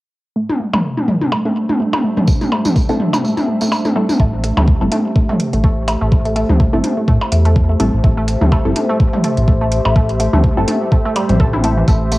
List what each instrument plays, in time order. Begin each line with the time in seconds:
0.36 ambient pad A3, synth pluck A3, synth drone D4
0.49 ambient pad C5, high tom
0.60 synth pluck A3
0.73 synth pluck A3, mid tom, high tom, percussion blips
0.93 ambient pad G4
0.97 synth pluck A3, high tom
1.08 synth pluck A3, mid tom
1.21 high tom
1.32 synth pluck A3, percussion blips
1.45 synth pluck A3, high tom
1.62 ambient pad E5
1.69 synth pluck A3, high tom
1.80 synth pluck A3
1.93 high tom, percussion blips
2.04 synth pluck A3
2.17 synth pluck A3, mid tom, high tom
2.27 kick, tambourine
2.41 synth pluck A3, high tom, tambourine
2.52 synth pluck A3, percussion blips
2.65 mid tom, high tom, tambourine
2.76 synth pluck A3, kick, tambourine
2.89 synth stab G3 C4 E4 A4, synth pluck A3, high tom, tambourine
3.00 mid tom
3.13 synth pluck A3, high tom, tambourine, percussion blips
3.24 synth pluck A3, tambourine
3.37 high tom, tambourine
3.48 synth pluck A3
3.61 synth pluck A3, high tom, tambourine
3.72 tambourine, percussion blips
3.85 synth pluck A3, high tom, tambourine
3.96 synth stab G3 C4 E4 A4, synth pluck A3
4.09 high tom, tambourine
4.20 analog synth bass A1, synth pluck A3, kick
4.44 synth pluck A3, closed hi-hat
4.57 analog synth bass D2, synth pluck A3, mid tom, high tom, percussion blips
4.68 kick
4.81 analog synth bass G1, synth stab G3 C4 E4 A4, synth pluck A3
4.92 synth pluck A3, closed hi-hat, high tom
5.16 synth pluck A3, kick
5.29 synth pluck A3, mid tom
5.40 closed hi-hat
5.53 analog synth bass A1, synth pluck A3, closed hi-hat
5.64 synth pluck A3, kick
5.88 synth pluck A3, closed hi-hat, percussion blips
6.01 analog synth bass A1, synth pluck A3
6.12 kick
6.25 synth pluck A3, closed hi-hat
6.36 synth pluck A3, closed hi-hat
6.49 analog synth bass D2, mid tom, high tom
6.60 synth pluck A3, kick
6.73 analog synth bass G1, synth stab G3 C4 E4 A4, synth pluck A3
6.84 closed hi-hat, high tom
6.97 synth pluck A3
7.08 analog synth bass A2, synth pluck A3, kick
7.21 percussion blips
7.32 analog synth bass E2, synth pluck A3, closed hi-hat
7.45 synth pluck A3, closed hi-hat
7.56 kick
7.69 synth pluck A3
7.80 analog synth bass A1, synth stab G3 C4 E4 A4, synth pluck A3, closed hi-hat
7.93 analog synth bass A1
8.04 analog synth bass A1, synth pluck A3, kick
8.17 synth pluck A3
8.28 closed hi-hat
8.41 analog synth bass D2, synth pluck A3, mid tom, high tom
8.52 synth pluck A3, kick, percussion blips
8.65 analog synth bass G1, synth stab G3 C4 E4 A4
8.76 synth pluck A3, closed hi-hat, high tom
8.89 synth pluck A3
9.00 kick
9.13 synth pluck A3, mid tom
9.24 synth pluck A3, closed hi-hat
9.37 analog synth bass A1, closed hi-hat
9.48 synth pluck A3, kick
9.61 synth pluck A3
9.72 closed hi-hat
9.85 analog synth bass A1, synth pluck A3, percussion blips
9.96 synth pluck A3, kick
10.09 closed hi-hat
10.20 synth pluck A3, closed hi-hat
10.33 analog synth bass D2, synth pluck A3, mid tom, high tom
10.44 kick
10.57 analog synth bass G1, synth stab G3 C4 E4 A4, synth pluck A3
10.68 synth pluck A3, closed hi-hat, high tom
10.92 synth pluck A3, kick
11.05 synth pluck A3
11.16 synth pluck G3, closed hi-hat, percussion blips
11.29 analog synth bass A1, synth pluck C4, closed hi-hat, mid tom
11.40 synth pluck A4, kick
11.53 synth pluck E4, high tom
11.64 synth stab G3 C4 E4 A4, synth pluck A3, closed hi-hat
11.77 synth pluck E3
11.88 analog synth bass A1, synth pluck A3, kick, closed hi-hat, tambourine
12.12 synth pluck A3, closed hi-hat, tambourine